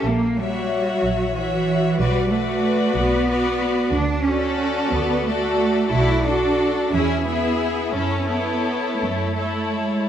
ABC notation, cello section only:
X:1
M:6/8
L:1/8
Q:3/8=61
K:Bm
V:1 name="Cello section"
^A, G,2 F, E,2 | G, A,2 B,3 | [K:F#m] D C2 B, A,2 | E D2 C B,2 |
C B,2 A,2 G, |]